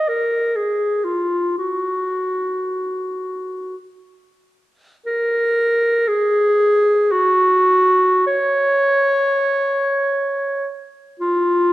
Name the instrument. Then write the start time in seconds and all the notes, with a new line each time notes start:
clarinet
0.08 A#4
0.56 G#4
1.04 F4
1.58 F#4
5.06 A#4
6.08 G#4
7.11 F#4
8.27 C#5
11.20 F4